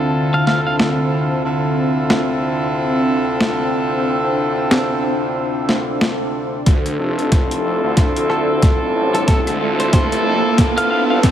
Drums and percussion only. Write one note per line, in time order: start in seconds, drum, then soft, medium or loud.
0.47 snare medium
0.80 snare loud
2.10 snare loud
3.41 snare loud
4.71 snare loud
5.69 snare medium
6.01 snare loud
6.66 kick loud
6.66 snare soft
6.66 closed hi-hat medium
6.86 closed hi-hat medium
7.19 closed hi-hat soft
7.32 kick medium
7.32 snare soft
7.32 closed hi-hat medium
7.51 closed hi-hat medium
7.97 kick medium
7.97 snare medium
7.97 closed hi-hat medium
8.16 closed hi-hat medium
8.30 cross-stick soft
8.62 kick loud
8.62 snare medium
8.62 closed hi-hat medium
9.15 closed hi-hat soft
9.28 kick loud
9.28 snare medium
9.28 closed hi-hat medium
9.47 cross-stick soft
9.47 closed hi-hat medium
9.80 closed hi-hat soft
9.93 kick medium
9.93 snare medium
9.93 closed hi-hat medium
10.12 closed hi-hat medium
10.58 kick medium
10.58 snare medium
10.58 closed hi-hat medium
10.78 closed hi-hat medium
11.23 kick medium
11.23 snare medium
11.23 closed hi-hat medium